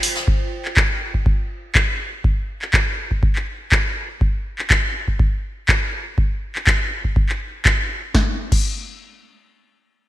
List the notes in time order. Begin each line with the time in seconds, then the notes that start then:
Already playing: F4 C5 G5
0.03 open hi-hat, ride
0.15 snare
0.28 kick
0.65 clap
0.77 kick, clap
1.14 kick
1.26 kick
1.75 kick, clap
2.24 kick
2.62 clap
2.74 kick, clap
3.11 kick
3.23 kick
3.36 clap
3.72 kick, clap
4.21 kick
4.59 clap
4.70 kick, clap
5.08 kick
5.19 kick
5.69 kick, clap
6.18 kick
6.55 clap
6.67 kick, clap
7.04 kick
7.16 kick
7.29 clap
7.65 kick, clap
8.15 kick, snare
8.52 kick, crash